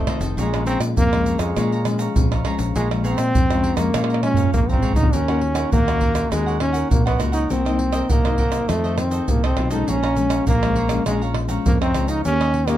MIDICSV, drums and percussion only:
0, 0, Header, 1, 4, 480
1, 0, Start_track
1, 0, Key_signature, -5, "minor"
1, 0, Tempo, 594059
1, 304, Time_signature, 4, 2, 24, 8
1, 4146, Key_signature, -6, "minor"
1, 10323, End_track
2, 0, Start_track
2, 0, Title_t, "Pandeiro"
2, 58, Note_on_c, 9, 54, 62
2, 138, Note_off_c, 9, 54, 0
2, 168, Note_on_c, 9, 54, 76
2, 249, Note_off_c, 9, 54, 0
2, 306, Note_on_c, 9, 54, 77
2, 387, Note_off_c, 9, 54, 0
2, 434, Note_on_c, 9, 54, 35
2, 515, Note_off_c, 9, 54, 0
2, 537, Note_on_c, 9, 54, 63
2, 618, Note_off_c, 9, 54, 0
2, 651, Note_on_c, 9, 54, 68
2, 731, Note_off_c, 9, 54, 0
2, 786, Note_on_c, 9, 54, 79
2, 866, Note_off_c, 9, 54, 0
2, 912, Note_on_c, 9, 54, 36
2, 993, Note_off_c, 9, 54, 0
2, 1018, Note_on_c, 9, 54, 61
2, 1099, Note_off_c, 9, 54, 0
2, 1125, Note_on_c, 9, 54, 72
2, 1206, Note_off_c, 9, 54, 0
2, 1265, Note_on_c, 9, 54, 79
2, 1345, Note_off_c, 9, 54, 0
2, 1392, Note_on_c, 9, 54, 33
2, 1472, Note_off_c, 9, 54, 0
2, 1496, Note_on_c, 9, 54, 63
2, 1577, Note_off_c, 9, 54, 0
2, 1608, Note_on_c, 9, 54, 72
2, 1689, Note_off_c, 9, 54, 0
2, 1745, Note_on_c, 9, 54, 79
2, 1826, Note_off_c, 9, 54, 0
2, 1872, Note_on_c, 9, 54, 34
2, 1953, Note_off_c, 9, 54, 0
2, 1978, Note_on_c, 9, 54, 57
2, 2059, Note_off_c, 9, 54, 0
2, 2091, Note_on_c, 9, 54, 73
2, 2172, Note_off_c, 9, 54, 0
2, 2227, Note_on_c, 9, 54, 79
2, 2307, Note_off_c, 9, 54, 0
2, 2354, Note_on_c, 9, 54, 34
2, 2434, Note_off_c, 9, 54, 0
2, 2460, Note_on_c, 9, 54, 62
2, 2541, Note_off_c, 9, 54, 0
2, 2569, Note_on_c, 9, 54, 69
2, 2650, Note_off_c, 9, 54, 0
2, 2708, Note_on_c, 9, 54, 80
2, 2788, Note_off_c, 9, 54, 0
2, 2832, Note_on_c, 9, 54, 35
2, 2913, Note_off_c, 9, 54, 0
2, 2938, Note_on_c, 9, 54, 60
2, 3019, Note_off_c, 9, 54, 0
2, 3045, Note_on_c, 9, 54, 74
2, 3126, Note_off_c, 9, 54, 0
2, 3185, Note_on_c, 9, 54, 79
2, 3265, Note_off_c, 9, 54, 0
2, 3313, Note_on_c, 9, 54, 32
2, 3394, Note_off_c, 9, 54, 0
2, 3418, Note_on_c, 9, 54, 60
2, 3499, Note_off_c, 9, 54, 0
2, 3530, Note_on_c, 9, 54, 68
2, 3611, Note_off_c, 9, 54, 0
2, 3665, Note_on_c, 9, 54, 77
2, 3746, Note_off_c, 9, 54, 0
2, 3793, Note_on_c, 9, 54, 35
2, 3874, Note_off_c, 9, 54, 0
2, 3899, Note_on_c, 9, 54, 54
2, 3980, Note_off_c, 9, 54, 0
2, 4008, Note_on_c, 9, 54, 70
2, 4089, Note_off_c, 9, 54, 0
2, 4145, Note_on_c, 9, 54, 77
2, 4226, Note_off_c, 9, 54, 0
2, 4269, Note_on_c, 9, 54, 32
2, 4350, Note_off_c, 9, 54, 0
2, 4375, Note_on_c, 9, 54, 60
2, 4455, Note_off_c, 9, 54, 0
2, 4485, Note_on_c, 9, 54, 72
2, 4566, Note_off_c, 9, 54, 0
2, 4626, Note_on_c, 9, 54, 75
2, 4706, Note_off_c, 9, 54, 0
2, 4751, Note_on_c, 9, 54, 36
2, 4832, Note_off_c, 9, 54, 0
2, 4854, Note_on_c, 9, 54, 57
2, 4935, Note_off_c, 9, 54, 0
2, 4970, Note_on_c, 9, 54, 74
2, 5050, Note_off_c, 9, 54, 0
2, 5105, Note_on_c, 9, 54, 87
2, 5186, Note_off_c, 9, 54, 0
2, 5235, Note_on_c, 9, 54, 33
2, 5316, Note_off_c, 9, 54, 0
2, 5335, Note_on_c, 9, 54, 59
2, 5416, Note_off_c, 9, 54, 0
2, 5447, Note_on_c, 9, 54, 69
2, 5528, Note_off_c, 9, 54, 0
2, 5585, Note_on_c, 9, 54, 75
2, 5666, Note_off_c, 9, 54, 0
2, 5711, Note_on_c, 9, 54, 33
2, 5792, Note_off_c, 9, 54, 0
2, 5816, Note_on_c, 9, 54, 57
2, 5896, Note_off_c, 9, 54, 0
2, 5924, Note_on_c, 9, 54, 69
2, 6005, Note_off_c, 9, 54, 0
2, 6061, Note_on_c, 9, 54, 78
2, 6142, Note_off_c, 9, 54, 0
2, 6192, Note_on_c, 9, 54, 32
2, 6272, Note_off_c, 9, 54, 0
2, 6293, Note_on_c, 9, 54, 62
2, 6374, Note_off_c, 9, 54, 0
2, 6404, Note_on_c, 9, 54, 70
2, 6485, Note_off_c, 9, 54, 0
2, 6541, Note_on_c, 9, 54, 76
2, 6621, Note_off_c, 9, 54, 0
2, 6666, Note_on_c, 9, 54, 33
2, 6746, Note_off_c, 9, 54, 0
2, 6770, Note_on_c, 9, 54, 56
2, 6850, Note_off_c, 9, 54, 0
2, 6882, Note_on_c, 9, 54, 69
2, 6963, Note_off_c, 9, 54, 0
2, 7021, Note_on_c, 9, 54, 81
2, 7102, Note_off_c, 9, 54, 0
2, 7144, Note_on_c, 9, 54, 33
2, 7225, Note_off_c, 9, 54, 0
2, 7253, Note_on_c, 9, 54, 60
2, 7334, Note_off_c, 9, 54, 0
2, 7363, Note_on_c, 9, 54, 66
2, 7444, Note_off_c, 9, 54, 0
2, 7498, Note_on_c, 9, 54, 81
2, 7579, Note_off_c, 9, 54, 0
2, 7626, Note_on_c, 9, 54, 35
2, 7707, Note_off_c, 9, 54, 0
2, 7730, Note_on_c, 9, 54, 60
2, 7811, Note_off_c, 9, 54, 0
2, 7843, Note_on_c, 9, 54, 73
2, 7924, Note_off_c, 9, 54, 0
2, 7981, Note_on_c, 9, 54, 84
2, 8062, Note_off_c, 9, 54, 0
2, 8109, Note_on_c, 9, 54, 33
2, 8190, Note_off_c, 9, 54, 0
2, 8213, Note_on_c, 9, 54, 65
2, 8293, Note_off_c, 9, 54, 0
2, 8324, Note_on_c, 9, 54, 73
2, 8405, Note_off_c, 9, 54, 0
2, 8458, Note_on_c, 9, 54, 82
2, 8539, Note_off_c, 9, 54, 0
2, 8588, Note_on_c, 9, 54, 33
2, 8668, Note_off_c, 9, 54, 0
2, 8691, Note_on_c, 9, 54, 58
2, 8772, Note_off_c, 9, 54, 0
2, 8801, Note_on_c, 9, 54, 71
2, 8882, Note_off_c, 9, 54, 0
2, 8937, Note_on_c, 9, 54, 82
2, 9018, Note_off_c, 9, 54, 0
2, 9066, Note_on_c, 9, 54, 34
2, 9147, Note_off_c, 9, 54, 0
2, 9167, Note_on_c, 9, 54, 57
2, 9247, Note_off_c, 9, 54, 0
2, 9282, Note_on_c, 9, 54, 74
2, 9362, Note_off_c, 9, 54, 0
2, 9420, Note_on_c, 9, 54, 83
2, 9500, Note_off_c, 9, 54, 0
2, 9548, Note_on_c, 9, 54, 34
2, 9629, Note_off_c, 9, 54, 0
2, 9651, Note_on_c, 9, 54, 60
2, 9732, Note_off_c, 9, 54, 0
2, 9762, Note_on_c, 9, 54, 69
2, 9843, Note_off_c, 9, 54, 0
2, 9898, Note_on_c, 9, 54, 82
2, 9978, Note_off_c, 9, 54, 0
2, 10026, Note_on_c, 9, 54, 34
2, 10107, Note_off_c, 9, 54, 0
2, 10129, Note_on_c, 9, 54, 58
2, 10210, Note_off_c, 9, 54, 0
2, 10242, Note_on_c, 9, 54, 74
2, 10323, Note_off_c, 9, 54, 0
2, 10323, End_track
3, 0, Start_track
3, 0, Title_t, "Tamborim"
3, 58, Note_on_c, 9, 60, 83
3, 138, Note_off_c, 9, 60, 0
3, 434, Note_on_c, 9, 60, 84
3, 515, Note_off_c, 9, 60, 0
3, 651, Note_on_c, 9, 60, 84
3, 731, Note_off_c, 9, 60, 0
3, 912, Note_on_c, 9, 60, 84
3, 993, Note_off_c, 9, 60, 0
3, 1125, Note_on_c, 9, 60, 84
3, 1206, Note_off_c, 9, 60, 0
3, 1265, Note_on_c, 9, 60, 77
3, 1345, Note_off_c, 9, 60, 0
3, 1496, Note_on_c, 9, 60, 84
3, 1577, Note_off_c, 9, 60, 0
3, 1872, Note_on_c, 9, 60, 83
3, 1953, Note_off_c, 9, 60, 0
3, 1978, Note_on_c, 9, 60, 78
3, 2059, Note_off_c, 9, 60, 0
3, 2354, Note_on_c, 9, 60, 79
3, 2434, Note_off_c, 9, 60, 0
3, 2569, Note_on_c, 9, 60, 81
3, 2650, Note_off_c, 9, 60, 0
3, 2832, Note_on_c, 9, 60, 89
3, 2913, Note_off_c, 9, 60, 0
3, 3045, Note_on_c, 9, 60, 89
3, 3126, Note_off_c, 9, 60, 0
3, 3185, Note_on_c, 9, 60, 80
3, 3264, Note_off_c, 9, 60, 0
3, 3264, Note_on_c, 9, 60, 89
3, 3345, Note_off_c, 9, 60, 0
3, 3348, Note_on_c, 9, 60, 79
3, 3418, Note_off_c, 9, 60, 0
3, 3418, Note_on_c, 9, 60, 74
3, 3499, Note_off_c, 9, 60, 0
3, 4269, Note_on_c, 9, 60, 79
3, 4350, Note_off_c, 9, 60, 0
3, 4485, Note_on_c, 9, 60, 86
3, 4566, Note_off_c, 9, 60, 0
3, 4751, Note_on_c, 9, 60, 84
3, 4832, Note_off_c, 9, 60, 0
3, 4970, Note_on_c, 9, 60, 86
3, 5050, Note_off_c, 9, 60, 0
3, 5105, Note_on_c, 9, 60, 75
3, 5186, Note_off_c, 9, 60, 0
3, 5335, Note_on_c, 9, 60, 84
3, 5416, Note_off_c, 9, 60, 0
3, 5711, Note_on_c, 9, 60, 83
3, 5792, Note_off_c, 9, 60, 0
3, 5816, Note_on_c, 9, 60, 83
3, 5896, Note_off_c, 9, 60, 0
3, 6192, Note_on_c, 9, 60, 74
3, 6272, Note_off_c, 9, 60, 0
3, 6404, Note_on_c, 9, 60, 84
3, 6485, Note_off_c, 9, 60, 0
3, 6666, Note_on_c, 9, 60, 82
3, 6746, Note_off_c, 9, 60, 0
3, 6882, Note_on_c, 9, 60, 80
3, 6963, Note_off_c, 9, 60, 0
3, 7021, Note_on_c, 9, 60, 82
3, 7102, Note_off_c, 9, 60, 0
3, 7253, Note_on_c, 9, 60, 80
3, 7334, Note_off_c, 9, 60, 0
3, 7626, Note_on_c, 9, 60, 84
3, 7707, Note_off_c, 9, 60, 0
3, 7730, Note_on_c, 9, 60, 83
3, 7811, Note_off_c, 9, 60, 0
3, 8109, Note_on_c, 9, 60, 85
3, 8190, Note_off_c, 9, 60, 0
3, 8324, Note_on_c, 9, 60, 88
3, 8405, Note_off_c, 9, 60, 0
3, 8588, Note_on_c, 9, 60, 89
3, 8668, Note_off_c, 9, 60, 0
3, 8801, Note_on_c, 9, 60, 92
3, 8882, Note_off_c, 9, 60, 0
3, 8937, Note_on_c, 9, 60, 81
3, 9018, Note_off_c, 9, 60, 0
3, 9167, Note_on_c, 9, 60, 86
3, 9247, Note_off_c, 9, 60, 0
3, 9548, Note_on_c, 9, 60, 86
3, 9629, Note_off_c, 9, 60, 0
3, 9651, Note_on_c, 9, 60, 81
3, 9732, Note_off_c, 9, 60, 0
3, 10026, Note_on_c, 9, 60, 83
3, 10107, Note_off_c, 9, 60, 0
3, 10242, Note_on_c, 9, 60, 87
3, 10323, Note_off_c, 9, 60, 0
3, 10323, End_track
4, 0, Start_track
4, 0, Title_t, "Drums"
4, 168, Note_on_c, 9, 82, 85
4, 249, Note_off_c, 9, 82, 0
4, 306, Note_on_c, 9, 82, 78
4, 306, Note_on_c, 9, 87, 58
4, 387, Note_off_c, 9, 82, 0
4, 387, Note_off_c, 9, 87, 0
4, 434, Note_on_c, 9, 82, 32
4, 515, Note_off_c, 9, 82, 0
4, 537, Note_on_c, 9, 82, 75
4, 618, Note_off_c, 9, 82, 0
4, 651, Note_on_c, 9, 82, 86
4, 731, Note_off_c, 9, 82, 0
4, 786, Note_on_c, 9, 82, 78
4, 786, Note_on_c, 9, 87, 103
4, 866, Note_off_c, 9, 82, 0
4, 866, Note_off_c, 9, 87, 0
4, 912, Note_on_c, 9, 82, 33
4, 993, Note_off_c, 9, 82, 0
4, 1018, Note_on_c, 9, 82, 71
4, 1099, Note_off_c, 9, 82, 0
4, 1125, Note_on_c, 9, 82, 86
4, 1206, Note_off_c, 9, 82, 0
4, 1265, Note_on_c, 9, 82, 82
4, 1265, Note_on_c, 9, 87, 61
4, 1345, Note_off_c, 9, 82, 0
4, 1345, Note_off_c, 9, 87, 0
4, 1392, Note_on_c, 9, 82, 33
4, 1472, Note_off_c, 9, 82, 0
4, 1496, Note_on_c, 9, 82, 73
4, 1577, Note_off_c, 9, 82, 0
4, 1608, Note_on_c, 9, 82, 88
4, 1689, Note_off_c, 9, 82, 0
4, 1745, Note_on_c, 9, 82, 78
4, 1745, Note_on_c, 9, 87, 100
4, 1826, Note_off_c, 9, 82, 0
4, 1826, Note_off_c, 9, 87, 0
4, 1872, Note_on_c, 9, 82, 33
4, 1953, Note_off_c, 9, 82, 0
4, 2091, Note_on_c, 9, 82, 87
4, 2172, Note_off_c, 9, 82, 0
4, 2227, Note_on_c, 9, 82, 80
4, 2227, Note_on_c, 9, 87, 58
4, 2307, Note_off_c, 9, 82, 0
4, 2307, Note_off_c, 9, 87, 0
4, 2354, Note_on_c, 9, 82, 31
4, 2434, Note_off_c, 9, 82, 0
4, 2460, Note_on_c, 9, 82, 75
4, 2541, Note_off_c, 9, 82, 0
4, 2569, Note_on_c, 9, 82, 87
4, 2650, Note_off_c, 9, 82, 0
4, 2708, Note_on_c, 9, 82, 74
4, 2708, Note_on_c, 9, 87, 100
4, 2788, Note_off_c, 9, 82, 0
4, 2788, Note_off_c, 9, 87, 0
4, 2832, Note_on_c, 9, 82, 35
4, 2913, Note_off_c, 9, 82, 0
4, 3045, Note_on_c, 9, 82, 92
4, 3126, Note_off_c, 9, 82, 0
4, 3185, Note_on_c, 9, 82, 76
4, 3185, Note_on_c, 9, 87, 61
4, 3265, Note_off_c, 9, 82, 0
4, 3265, Note_off_c, 9, 87, 0
4, 3313, Note_on_c, 9, 82, 33
4, 3394, Note_off_c, 9, 82, 0
4, 3507, Note_on_c, 9, 87, 99
4, 3530, Note_on_c, 9, 82, 84
4, 3585, Note_off_c, 9, 87, 0
4, 3585, Note_on_c, 9, 87, 98
4, 3611, Note_off_c, 9, 82, 0
4, 3665, Note_off_c, 9, 87, 0
4, 3665, Note_on_c, 9, 82, 77
4, 3665, Note_on_c, 9, 87, 91
4, 3746, Note_off_c, 9, 82, 0
4, 3746, Note_off_c, 9, 87, 0
4, 3793, Note_on_c, 9, 82, 38
4, 3825, Note_on_c, 9, 87, 70
4, 3874, Note_off_c, 9, 82, 0
4, 3899, Note_off_c, 9, 87, 0
4, 3899, Note_on_c, 9, 87, 80
4, 3980, Note_off_c, 9, 87, 0
4, 3985, Note_on_c, 9, 87, 93
4, 4008, Note_on_c, 9, 82, 83
4, 4066, Note_off_c, 9, 87, 0
4, 4066, Note_on_c, 9, 87, 78
4, 4089, Note_off_c, 9, 82, 0
4, 4145, Note_off_c, 9, 87, 0
4, 4145, Note_on_c, 9, 82, 83
4, 4145, Note_on_c, 9, 87, 59
4, 4226, Note_off_c, 9, 82, 0
4, 4226, Note_off_c, 9, 87, 0
4, 4269, Note_on_c, 9, 82, 32
4, 4350, Note_off_c, 9, 82, 0
4, 4485, Note_on_c, 9, 82, 83
4, 4566, Note_off_c, 9, 82, 0
4, 4626, Note_on_c, 9, 82, 75
4, 4626, Note_on_c, 9, 87, 92
4, 4706, Note_off_c, 9, 82, 0
4, 4706, Note_off_c, 9, 87, 0
4, 4751, Note_on_c, 9, 82, 35
4, 4832, Note_off_c, 9, 82, 0
4, 4854, Note_on_c, 9, 87, 70
4, 4935, Note_off_c, 9, 87, 0
4, 4970, Note_on_c, 9, 82, 81
4, 5050, Note_off_c, 9, 82, 0
4, 5105, Note_on_c, 9, 82, 77
4, 5105, Note_on_c, 9, 87, 60
4, 5186, Note_off_c, 9, 82, 0
4, 5186, Note_off_c, 9, 87, 0
4, 5235, Note_on_c, 9, 82, 32
4, 5316, Note_off_c, 9, 82, 0
4, 5447, Note_on_c, 9, 82, 87
4, 5528, Note_off_c, 9, 82, 0
4, 5585, Note_on_c, 9, 82, 78
4, 5585, Note_on_c, 9, 87, 101
4, 5666, Note_off_c, 9, 82, 0
4, 5666, Note_off_c, 9, 87, 0
4, 5711, Note_on_c, 9, 82, 34
4, 5792, Note_off_c, 9, 82, 0
4, 5816, Note_on_c, 9, 82, 71
4, 5896, Note_off_c, 9, 82, 0
4, 5924, Note_on_c, 9, 82, 88
4, 6005, Note_off_c, 9, 82, 0
4, 6061, Note_on_c, 9, 82, 77
4, 6061, Note_on_c, 9, 87, 55
4, 6142, Note_off_c, 9, 82, 0
4, 6142, Note_off_c, 9, 87, 0
4, 6192, Note_on_c, 9, 82, 33
4, 6272, Note_off_c, 9, 82, 0
4, 6404, Note_on_c, 9, 82, 83
4, 6485, Note_off_c, 9, 82, 0
4, 6541, Note_on_c, 9, 82, 74
4, 6541, Note_on_c, 9, 87, 94
4, 6621, Note_off_c, 9, 82, 0
4, 6621, Note_off_c, 9, 87, 0
4, 6666, Note_on_c, 9, 82, 32
4, 6746, Note_off_c, 9, 82, 0
4, 6770, Note_on_c, 9, 87, 69
4, 6850, Note_off_c, 9, 87, 0
4, 6882, Note_on_c, 9, 82, 85
4, 6963, Note_off_c, 9, 82, 0
4, 7021, Note_on_c, 9, 82, 84
4, 7021, Note_on_c, 9, 87, 56
4, 7102, Note_off_c, 9, 82, 0
4, 7102, Note_off_c, 9, 87, 0
4, 7144, Note_on_c, 9, 82, 32
4, 7225, Note_off_c, 9, 82, 0
4, 7253, Note_on_c, 9, 82, 67
4, 7334, Note_off_c, 9, 82, 0
4, 7363, Note_on_c, 9, 82, 86
4, 7444, Note_off_c, 9, 82, 0
4, 7498, Note_on_c, 9, 82, 78
4, 7498, Note_on_c, 9, 87, 92
4, 7579, Note_off_c, 9, 82, 0
4, 7579, Note_off_c, 9, 87, 0
4, 7626, Note_on_c, 9, 82, 34
4, 7707, Note_off_c, 9, 82, 0
4, 7843, Note_on_c, 9, 82, 92
4, 7924, Note_off_c, 9, 82, 0
4, 7981, Note_on_c, 9, 82, 84
4, 7981, Note_on_c, 9, 87, 59
4, 8062, Note_off_c, 9, 82, 0
4, 8062, Note_off_c, 9, 87, 0
4, 8109, Note_on_c, 9, 82, 32
4, 8190, Note_off_c, 9, 82, 0
4, 8213, Note_on_c, 9, 82, 72
4, 8293, Note_off_c, 9, 82, 0
4, 8324, Note_on_c, 9, 82, 87
4, 8405, Note_off_c, 9, 82, 0
4, 8458, Note_on_c, 9, 82, 79
4, 8458, Note_on_c, 9, 87, 90
4, 8539, Note_off_c, 9, 82, 0
4, 8539, Note_off_c, 9, 87, 0
4, 8588, Note_on_c, 9, 82, 34
4, 8668, Note_off_c, 9, 82, 0
4, 8801, Note_on_c, 9, 82, 86
4, 8882, Note_off_c, 9, 82, 0
4, 8937, Note_on_c, 9, 82, 82
4, 8937, Note_on_c, 9, 87, 60
4, 9018, Note_off_c, 9, 82, 0
4, 9018, Note_off_c, 9, 87, 0
4, 9066, Note_on_c, 9, 82, 34
4, 9147, Note_off_c, 9, 82, 0
4, 9282, Note_on_c, 9, 82, 85
4, 9362, Note_off_c, 9, 82, 0
4, 9420, Note_on_c, 9, 82, 78
4, 9420, Note_on_c, 9, 87, 104
4, 9500, Note_off_c, 9, 82, 0
4, 9500, Note_off_c, 9, 87, 0
4, 9548, Note_on_c, 9, 82, 34
4, 9629, Note_off_c, 9, 82, 0
4, 9651, Note_on_c, 9, 82, 72
4, 9732, Note_off_c, 9, 82, 0
4, 9762, Note_on_c, 9, 82, 90
4, 9843, Note_off_c, 9, 82, 0
4, 9898, Note_on_c, 9, 82, 86
4, 9898, Note_on_c, 9, 87, 53
4, 9978, Note_off_c, 9, 82, 0
4, 9978, Note_off_c, 9, 87, 0
4, 10026, Note_on_c, 9, 82, 35
4, 10107, Note_off_c, 9, 82, 0
4, 10242, Note_on_c, 9, 82, 81
4, 10323, Note_off_c, 9, 82, 0
4, 10323, End_track
0, 0, End_of_file